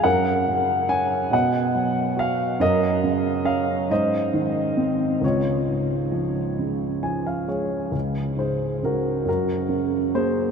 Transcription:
0.04 F#2 A#4 F#5
0.48 C#3
0.89 C#4 G#5
1.31 B2 D#5 F#5
1.75 F#3
2.17 F#4 F5
2.60 F#2 A#4 D#5
3.04 C#3
3.45 C#4 F5
3.89 G#2 C5 D#5
4.34 D#3
4.77 C4
5.21 C#2 F4 C#5
5.67 G#2
6.12 F3
6.59 C#3
7.03 F3 G#5
7.26 F5
7.48 G#3 C#5
7.92 C#2
8.36 G#2 G#4 C5
8.83 C#3 F#4 A#4
9.25 F#2 F#4 A#4
9.69 C#3
10.14 A#3 G#4 C5

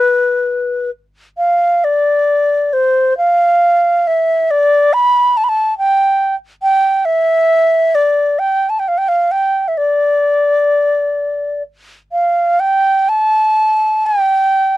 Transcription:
Already playing: B4
1.38 F5
1.84 D5
2.73 C5
3.18 F5
4.07 E5
4.51 D5
4.93 B5
5.37 A5
5.44 B5
5.49 A5
5.78 G5
6.62 G5
7.05 E5
7.95 D5
8.39 G5
8.70 A5
8.79 G5
8.88 F5
8.98 G5
9.08 F5
9.31 G5
9.68 E5
9.78 D5
12.12 F5
12.60 G5
13.09 A5
14.06 G5

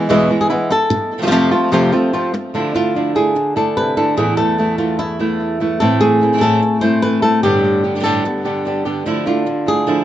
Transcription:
0.09 E2 B2 E3 G#3 B3 E4
0.29 E3 G#3 B3 E4
0.41 G#4
0.50 E3 G#3 B3 E4, muted nylon-string guitar stroke
0.70 A4, muted nylon-string guitar stroke
0.91 muted nylon-string guitar stroke
1.18 C3 F3 A3 C4 F4
1.23 C3 F3 A3 C4 F4
1.27 C3 F3 A3 C4 F4
1.32 F2 C3 F3 A3 C4 F4
1.52 F3 A3 C4 F4
1.72 F2 C3 F3 A3 C4 F4
1.93 F3 A3 C4 F4
2.13 F3 A3 C4 F4, muted nylon-string guitar stroke
2.34 muted nylon-string guitar stroke
2.54 D3 F3 A3 D4 E4 F4
2.74 A3 D4 E4 F4
2.95 F3 A3 D4 E4
3.15 A3 D4 E4 G#4
3.35 muted nylon-string guitar stroke
3.56 A3 D4 E4 A4
3.77 C3 B4
3.97 D3 A3 D4 E4 A4
4.17 E2 A2 E3 A3 B3 E4 G#4
4.37 E3 A3 B3 E4 A4
4.58 E3 A3 B3 E4
4.78 E3 A3 B3 E4 F4
4.99 E4, muted nylon-string guitar stroke
5.19 E3 A3 B3 E4
5.60 E3 A3 B3 E4
5.80 A2 E3 A3 C4 E4 A4
6.01 A3 G#4
6.21 A3 C4 E4
6.33 E3 A3 C4 E4
6.37 E3 A3 C4 E4
6.41 A2 E3 A3 C4 E4 A4
6.62 muted nylon-string guitar stroke
6.81 A3 C4 E4 C5
7.02 E3 A3 C4 E4 B4
7.22 A3 C4 E4 A4
7.43 G2 A2 D3 G3 B3 D4 G4
7.64 D3
7.84 D3 G3 B3 G4
7.95 A2 D3 G3 B3 G4
8.00 A2 D3 G3 B3 G4 A4
8.04 G2 A2 D3 G3 B3 G4
8.25 B3, muted nylon-string guitar stroke
8.45 D3 G3 B3 G4
8.65 D3 G3 B3 D4 G4
8.85 D3 G3 B3 G4
9.06 D3 F3 A3 D4 E4
9.26 A3 D4 E4 F4
9.46 muted nylon-string guitar stroke
9.66 A3 D4 E4 G#4
9.86 D3 F3 A3 D4 E4

